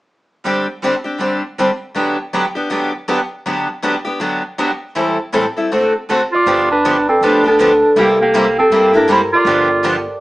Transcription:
0.45 0.66 D3 medium
0.45 0.66 G3 medium
0.45 0.66 C4 medium
0.45 0.66 D4 medium
0.45 0.66 G4 medium
0.83 0.94 D3 medium
0.83 0.94 G3 medium
0.83 0.94 C4 medium
0.83 0.95 D4 medium
0.83 0.94 G4 medium
1.04 1.19 C4 soft
1.04 1.19 D4 soft
1.04 1.19 G4 medium
1.20 1.41 D3 medium
1.20 1.41 G3 medium
1.20 1.41 C4 medium
1.20 1.41 D4 medium
1.20 1.41 G4 medium
1.59 1.69 D3 medium
1.59 1.70 G3 medium
1.59 1.70 C4 medium
1.59 1.70 D4 medium
1.59 1.70 G4 medium
1.95 2.16 D3 medium
1.95 2.16 F#3 medium
1.95 2.16 B3 medium
1.95 2.16 D4 medium
1.95 2.16 G4 medium
2.33 2.44 D3 medium
2.33 2.44 F#3 medium
2.33 2.45 B3 medium
2.33 2.44 D4 medium
2.33 2.45 G4 medium
2.55 2.69 B3 soft
2.55 2.69 D4 soft
2.55 2.70 G4 soft
2.70 2.91 D3 medium
2.70 2.91 F#3 medium
2.70 2.91 B3 medium
2.70 2.91 D4 medium
2.70 2.92 G4 medium
3.08 3.19 D3 medium
3.08 3.19 F#3 medium
3.08 3.20 B3 medium
3.08 3.19 D4 medium
3.08 3.20 G4 medium
3.46 3.67 D3 medium
3.46 3.67 F#3 medium
3.46 3.67 B3 medium
3.46 3.67 D4 medium
3.46 3.67 G4 medium
3.82 3.94 D3 medium
3.82 3.94 F#3 medium
3.82 3.94 B3 medium
3.82 3.95 D4 medium
3.82 3.95 G4 medium
4.05 4.20 B3 soft
4.05 4.20 D4 soft
4.05 4.20 G4 soft
4.20 4.41 D3 soft
4.20 4.42 F#3 medium
4.20 4.42 B3 medium
4.20 4.42 D4 medium
4.20 4.42 G4 medium
4.58 4.70 D3 medium
4.58 4.70 F#3 medium
4.58 4.70 B3 medium
4.58 4.70 D4 medium
4.58 4.70 G4 medium
4.95 5.17 A2 medium
4.95 5.17 E3 medium
4.95 5.17 G3 medium
4.95 5.17 C4 medium
4.95 5.17 E4 medium
4.95 5.17 A4 medium
5.33 5.44 A2 medium
5.33 5.45 E3 medium
5.33 5.45 G3 medium
5.33 5.45 C4 medium
5.33 5.45 E4 medium
5.33 5.45 A4 medium
5.57 5.71 G3 soft
5.57 5.71 C4 soft
5.57 5.71 E4 soft
5.57 5.71 A4 soft
5.72 5.92 D3 medium
5.72 5.92 A3 medium
5.72 5.92 C4 medium
5.72 5.93 F#4 medium
5.72 5.93 A4 medium
6.10 6.21 D3 medium
6.10 6.21 A3 medium
6.10 6.21 C4 medium
6.10 6.21 F#4 medium
6.10 6.21 A4 medium
6.32 6.67 F4 medium
6.32 8.19 D5 medium
6.46 7.07 G1 medium
6.46 6.67 D3 medium
6.46 6.68 F3 medium
6.46 6.68 B3 medium
6.46 6.68 D4 medium
6.46 6.68 G4 medium
6.71 7.05 D4 medium
6.71 7.23 B4 medium
6.85 6.96 D3 medium
6.85 6.96 F3 medium
6.85 6.96 B3 medium
6.85 6.96 D4 medium
6.85 6.96 G4 medium
7.09 7.22 C4 medium
7.09 7.47 A4 medium
7.21 7.81 D2 medium
7.21 7.43 D3 medium
7.21 7.43 F3 medium
7.21 7.43 B3 medium
7.21 7.43 D4 medium
7.21 7.43 G4 medium
7.21 9.03 B4 medium
7.25 7.45 D4 medium
7.44 7.59 B3 soft
7.44 7.59 D4 soft
7.44 7.95 D4 medium
7.44 7.58 G4 soft
7.44 8.59 A4 medium
7.60 7.71 D3 medium
7.60 7.71 F3 medium
7.60 7.71 B3 medium
7.60 7.71 D4 medium
7.60 7.71 G4 medium
7.96 8.56 C2 medium
7.96 8.17 C3 medium
7.96 8.17 G3 medium
7.96 8.17 A#3 medium
7.96 8.09 A#3 medium
7.96 8.17 E4 medium
7.96 8.17 G4 medium
7.96 8.05 G4 medium
8.21 8.55 A#3 medium
8.21 10.20 G4 medium
8.34 8.45 C3 medium
8.34 8.45 G3 medium
8.34 8.45 A#3 medium
8.34 8.45 E4 medium
8.34 8.46 G4 medium
8.58 8.93 C4 medium
8.58 9.03 A4 medium
8.70 9.31 G2 medium
8.70 8.93 C3 medium
8.70 8.92 G3 medium
8.70 8.93 A#3 medium
8.70 8.92 E4 medium
8.70 8.92 G4 medium
8.93 9.07 A#3 soft
8.93 9.09 D4 medium
8.93 9.07 E4 soft
8.93 9.08 G4 medium
8.93 10.20 A#4 medium
9.08 9.19 C3 medium
9.08 9.20 G3 medium
9.08 9.20 A#3 medium
9.08 9.20 E4 medium
9.08 9.21 E4 medium
9.08 9.20 G4 medium
9.08 9.17 C5 medium
9.33 10.03 F4 medium
9.33 10.20 D5 medium
9.45 10.06 G1 medium
9.45 9.67 D3 medium
9.45 9.68 F3 medium
9.45 9.68 B3 medium
9.45 9.68 D4 medium
9.45 9.68 G4 medium
9.84 9.95 D3 medium
9.84 9.95 F3 medium
9.84 9.95 B3 medium
9.84 9.95 D4 medium
9.84 9.96 G4 medium

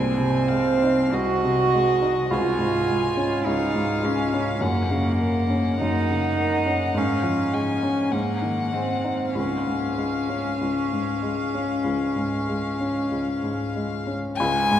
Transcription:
0.00 1.12 C2 medium
0.00 1.14 C4 medium
0.00 0.50 G#5 medium
0.18 0.70 C3 soft
0.49 1.02 G#3 soft
0.49 1.15 F5 medium
0.83 1.33 D#4 soft
1.12 2.28 C2 soft
1.12 2.33 F#4 medium
1.12 2.34 D#5 medium
1.44 1.91 C3 soft
1.74 2.20 G#3 soft
2.02 2.31 D#4 soft
2.31 3.45 C#2 medium
2.31 3.47 F4 medium
2.31 3.46 G#5 medium
2.59 3.06 G#2 soft
2.89 3.35 G#3 soft
3.17 3.64 C#4 soft
3.46 4.58 C#2 soft
3.46 4.06 D#4 medium
3.46 4.63 F5 medium
3.75 4.21 G#2 soft
4.03 4.49 G#3 soft
4.03 4.63 C#4 medium
4.33 4.62 C#4 soft
4.61 5.80 F#2 medium
4.61 5.80 A#3 medium
4.61 5.20 F#5 medium
4.90 5.39 C#3 soft
5.19 5.69 A#3 soft
5.19 6.99 F#5 medium
5.50 5.99 C#4 soft
5.81 6.93 F#2 soft
5.81 6.99 D#4 medium
6.10 6.56 C#3 soft
6.39 6.85 A#3 soft
6.66 6.96 C#4 soft
6.94 8.08 G#2 medium
6.94 8.13 C#4 medium
6.94 7.55 F5 medium
7.23 7.71 F3 soft
7.53 8.01 G#3 soft
7.53 8.13 G#5 soft
7.83 8.13 C#4 soft
8.12 9.32 G#2 soft
8.12 8.75 A#3 medium
8.12 9.36 F#5 soft
8.42 8.92 D#3 soft
8.73 9.24 G#3 soft
8.73 9.36 C4 medium
9.04 9.36 D#4 soft
9.35 10.60 C#2 soft
9.35 13.69 C#4 medium
9.35 14.12 F5 soft
9.67 10.18 G#2 soft
9.98 10.49 G#3 soft
10.29 10.80 C#4 soft
10.61 11.83 C#2 soft
10.92 11.42 G#2 soft
11.22 11.72 G#3 soft
11.54 12.03 C#4 soft
11.84 13.10 C#2 soft
12.16 12.66 G#2 soft
12.49 12.98 G#3 soft
12.80 13.29 C#4 soft
13.12 14.35 C#2 soft
13.43 13.94 G#2 soft
13.76 14.26 G#3 soft
14.07 14.38 C#4 soft
14.37 14.80 C#2 medium
14.37 14.80 G#3 medium
14.37 14.80 G#5 loud
14.71 14.80 G#2 medium

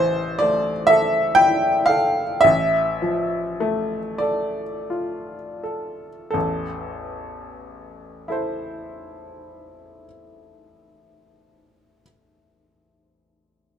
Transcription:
0.00 2.41 A1 medium
0.00 0.71 E3 medium
0.00 0.40 C5 loud
0.39 1.19 A3 medium
0.39 0.88 D5 loud
0.87 1.68 A4 medium
0.87 1.36 E5 loud
1.35 2.22 E4 medium
1.35 1.87 G5 loud
1.86 2.44 A4 medium
1.86 2.42 F5 loud
2.41 6.30 A1 medium
2.41 4.21 E5 loud
3.02 3.97 F3 medium
3.60 4.62 A3 medium
4.18 5.33 A4 medium
4.18 6.32 D5 medium
4.90 6.08 F4 medium
5.63 6.29 A4 medium
6.31 10.05 A1 medium
6.31 10.05 E2 medium
6.31 8.28 A4 medium
8.28 12.00 E4 medium
8.28 12.01 A4 soft
8.28 12.03 C5 medium

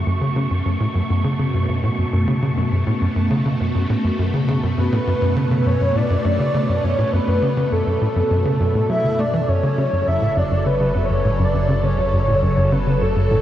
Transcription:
0.00 9.44 F#2 medium
0.00 9.49 C#6 medium
0.06 0.21 F#2 loud
0.06 9.44 B2 medium
0.06 9.47 A3 medium
0.21 0.35 C#3 medium
0.36 0.47 C#3 loud
0.51 0.62 F#2 medium
0.66 0.77 F#2 medium
0.80 0.87 A2 loud
0.95 1.02 F#2 loud
1.10 1.24 F#2 medium
1.24 1.39 C#3 loud
1.39 1.50 C#3 loud
1.54 1.65 F#2 medium
1.69 1.80 F#2 medium
1.83 1.90 A2 medium
1.98 2.05 F#2 medium
2.13 2.27 F#2 loud
2.28 2.42 C#3 loud
2.42 2.53 C#3 loud
2.57 2.68 F#2 medium
2.72 2.83 F#2 medium
2.87 2.93 A2 loud
3.01 3.08 F#2 loud
3.16 3.30 F#2 medium
3.31 3.45 C#3 loud
3.46 3.57 C#3 medium
3.60 3.71 F#2 medium
3.75 3.86 F#2 medium
3.90 3.96 A2 loud
4.04 4.11 F#2 medium
4.19 4.33 F#2 medium
4.34 4.48 C#3 medium
4.48 4.59 C#3 loud
4.63 4.74 F#2 medium
4.78 4.89 F#2 medium
4.78 5.68 B4 loud
4.92 4.99 A2 loud
5.07 5.14 F#2 loud
5.22 5.36 F#2 loud
5.36 5.51 C#3 medium
5.51 5.62 C#3 medium
5.66 5.77 F#2 medium
5.66 5.98 C#5 loud
5.81 5.92 F#2 medium
5.95 6.02 A2 loud
5.95 6.85 D5 loud
6.10 6.17 F#2 loud
6.25 6.39 F#2 loud
6.39 6.53 C#3 medium
6.54 6.65 C#3 loud
6.69 6.80 F#2 medium
6.84 6.95 F#2 medium
6.84 7.12 C#5 loud
6.98 7.05 A2 loud
7.13 7.20 F#2 loud
7.13 7.74 B4 medium
7.28 7.42 F#2 loud
7.42 7.56 C#3 loud
7.57 7.68 C#3 loud
7.72 7.83 F#2 medium
7.72 8.89 A4 medium
7.87 7.98 F#2 medium
8.01 8.08 A2 loud
8.16 8.23 F#2 medium
8.31 8.45 F#2 loud
8.45 8.59 C#3 loud
8.60 8.74 F#2 loud
8.75 8.86 A2 medium
8.89 9.01 F#3 medium
8.89 9.21 E5 loud
9.04 9.11 C#3 medium
9.19 9.26 A3 loud
9.19 9.50 D5 loud
9.34 9.40 E3 loud
9.48 13.42 F#1 medium
9.48 9.62 F#2 loud
9.48 13.42 C#3 medium
9.48 13.42 F#3 medium
9.48 13.42 A4 medium
9.48 10.09 C#5 loud
9.63 9.77 C#3 loud
9.78 9.89 C#3 loud
9.93 10.04 F#2 medium
10.07 10.18 F#2 medium
10.07 10.37 E5 loud
10.22 10.28 A2 medium
10.37 10.43 F#2 loud
10.37 10.68 D5 loud
10.51 10.65 F#2 medium
10.66 10.80 C#3 loud
10.66 11.07 B4 medium
10.81 10.92 C#3 loud
10.95 11.06 F#2 medium
11.05 11.46 C#5 loud
11.10 11.21 F#2 medium
11.25 11.31 A2 loud
11.39 11.46 F#2 medium
11.45 11.84 D5 loud
11.54 11.68 F#2 loud
11.69 11.83 C#3 loud
11.83 11.94 C#3 loud
11.83 12.74 C#5 loud
11.98 12.09 F#2 medium
12.13 12.24 F#2 medium
12.28 12.34 A2 loud
12.42 12.49 F#2 loud
12.57 12.71 F#2 medium
12.72 12.86 C#3 loud
12.72 13.02 B4 medium
12.87 12.98 C#3 medium
13.01 13.12 F#2 medium
13.01 13.42 A4 medium
13.16 13.27 F#2 medium
13.31 13.37 A2 loud

